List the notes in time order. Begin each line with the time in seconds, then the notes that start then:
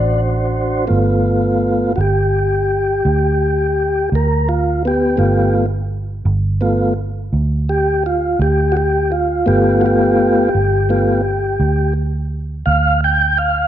Already playing: A1 D4 F#4 C5 D5
0.87 G1 A3 B3 F4
1.96 G1 F#4
2.01 G4
3.05 D2
4.12 D2 A#4
4.49 F4
4.85 B3 G4
5.17 G1 A3 B3 F4
6.25 G1
6.61 A3 B3 F4
7.33 D2
7.69 G4
8.06 F4
8.39 D2 G4
8.72 F#4
8.77 G4
9.12 F4
9.46 G1 A3 B3 F4 G4
9.81 F#4
9.86 G4
10.55 G1
10.89 A3 B3 F4
11.60 D2
12.66 D2 F5
13.04 G5
13.38 F5